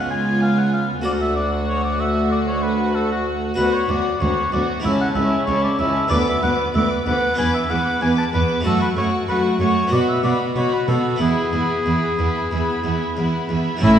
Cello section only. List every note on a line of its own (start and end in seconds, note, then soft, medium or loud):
0.00 1.05 C#2 soft
1.05 3.54 D2 medium
3.57 3.65 D2 medium
3.90 3.98 D2 soft
4.22 4.30 D2 medium
4.53 4.61 D2 soft
4.85 4.93 C#2 medium
5.16 5.24 C#2 medium
5.48 5.56 C#2 medium
5.81 5.89 C#2 medium
6.12 6.20 D2 medium
6.43 6.51 D2 medium
6.76 6.84 D2 medium
7.07 7.15 D2 medium
7.39 7.47 E2 medium
7.71 7.79 E2 medium
8.02 8.10 E2 medium
8.34 8.42 E2 medium
8.65 8.73 F#2 medium
8.96 9.04 F#2 medium
9.28 9.36 F#2 medium
9.59 9.67 F#2 medium
9.91 9.99 B2 medium
10.24 10.32 B2 medium
10.56 10.64 B2 medium
10.88 10.96 B2 medium
11.20 11.28 E2 medium
11.53 11.61 E2 soft
11.86 11.94 E2 soft
12.19 12.27 E2 soft
12.53 12.61 E2 medium
12.85 12.93 E2 soft
13.18 13.26 E2 medium
13.50 13.58 E2 medium
13.82 13.99 A2 medium